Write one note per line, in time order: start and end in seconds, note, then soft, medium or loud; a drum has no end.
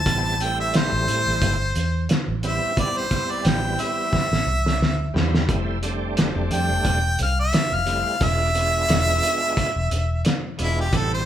0.00 0.44 A5 loud
0.06 0.88 A1 medium
0.06 0.35 G3 medium
0.06 0.36 B3 medium
0.06 0.36 C4 medium
0.06 0.36 E4 medium
0.06 kick loud
0.06 closed hi-hat medium
0.40 1.56 G3 medium
0.40 1.57 A3 medium
0.40 1.57 C4 medium
0.40 1.57 E4 medium
0.40 0.58 G5 medium
0.40 closed hi-hat medium
0.60 0.74 E5 medium
0.74 2.07 C5 loud
0.74 snare loud
0.74 closed hi-hat medium
0.92 1.06 A1 medium
1.08 1.25 A2 medium
1.08 closed hi-hat medium
1.27 1.41 A1 medium
1.42 1.72 G1 medium
1.42 kick medium
1.42 closed hi-hat medium
1.75 2.06 E2 medium
1.75 closed hi-hat medium
2.09 snare loud
2.09 closed hi-hat medium
2.28 2.59 A1 medium
2.43 2.73 G3 medium
2.43 2.73 B3 medium
2.43 2.73 C4 medium
2.43 2.73 E4 medium
2.43 2.78 E5 medium
2.43 closed hi-hat medium
2.76 3.06 G3 medium
2.76 3.07 B3 medium
2.76 3.07 C4 medium
2.76 3.07 E4 medium
2.76 2.99 D5 medium
2.76 kick loud
2.76 closed hi-hat medium
2.97 3.33 C5 medium
3.10 4.28 G3 medium
3.10 4.28 B3 medium
3.10 4.28 C4 medium
3.10 4.28 E4 medium
3.10 kick medium
3.10 closed hi-hat medium
3.31 3.48 D5 medium
3.45 3.76 A1 medium
3.45 3.83 G5 medium
3.45 snare loud
3.45 closed hi-hat medium
3.79 5.12 E5 loud
3.79 closed hi-hat medium
4.13 kick medium
4.13 snare medium
4.31 4.46 A1 medium
4.31 snare medium
4.47 4.77 C2 medium
4.66 snare medium
4.81 5.11 D2 medium
4.81 snare medium
5.14 5.46 E2 medium
5.14 5.44 G3 medium
5.14 5.44 B3 medium
5.14 5.44 C4 medium
5.14 5.45 E4 medium
5.14 snare medium
5.34 snare medium
5.48 6.31 F1 medium
5.48 5.78 G3 medium
5.48 5.78 A3 medium
5.48 5.79 C4 medium
5.48 5.79 E4 medium
5.48 kick loud
5.48 closed hi-hat medium
5.82 6.99 G3 medium
5.82 7.00 A3 medium
5.82 7.00 C4 medium
5.82 7.00 D4 medium
5.82 closed hi-hat medium
6.17 snare loud
6.17 closed hi-hat medium
6.36 6.50 F1 medium
6.51 6.68 F2 medium
6.51 7.18 G5 loud
6.51 closed hi-hat medium
6.70 6.84 F1 medium
6.85 7.16 E1 medium
6.85 kick medium
6.85 closed hi-hat medium
7.19 7.50 C2 medium
7.19 7.38 F5 medium
7.19 closed hi-hat medium
7.40 7.75 E5 medium
7.53 snare loud
7.53 closed hi-hat medium
7.72 8.02 F1 medium
7.72 8.26 F5 loud
7.86 8.16 G3 medium
7.86 8.16 A3 medium
7.86 8.16 C4 medium
7.86 8.17 E4 medium
7.86 closed hi-hat medium
8.21 8.85 E1 loud
8.21 8.50 G#3 medium
8.21 8.50 B3 medium
8.21 8.51 D4 medium
8.21 8.51 F4 medium
8.21 10.23 E5 loud
8.21 kick loud
8.21 closed hi-hat medium
8.54 9.72 G#3 medium
8.54 9.72 B3 medium
8.54 9.72 D4 medium
8.54 9.72 F4 medium
8.54 closed hi-hat medium
8.89 9.20 E1 medium
8.89 snare loud
8.89 closed hi-hat medium
9.23 closed hi-hat medium
9.57 kick medium
9.57 closed hi-hat medium
9.76 9.90 E1 medium
9.91 10.22 E1 medium
9.91 closed hi-hat medium
10.25 snare loud
10.25 closed hi-hat medium
10.58 10.90 E1 medium
10.58 10.88 G#3 medium
10.58 10.88 B3 medium
10.58 10.88 D4 medium
10.58 10.89 F4 medium
10.58 closed hi-hat medium
10.62 10.78 E4 medium
10.81 10.97 G4 medium
10.93 11.25 A1 medium
10.93 11.22 G3 medium
10.93 11.22 B3 medium
10.93 11.23 C4 medium
10.93 11.23 E4 medium
10.93 11.12 A4 medium
10.93 kick loud
10.93 closed hi-hat medium
11.14 11.25 C5 medium